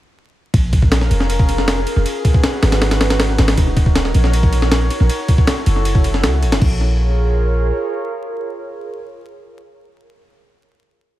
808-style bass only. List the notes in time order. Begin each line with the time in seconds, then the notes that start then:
0.54 A#1
1.11 F1
1.96 F1
2.63 G#1
3.39 G#1
3.58 D#1
4.15 A#1
5.00 A#1
5.67 F#1
6.24 C#2
6.43 A1
6.52 F#1
6.62 A#1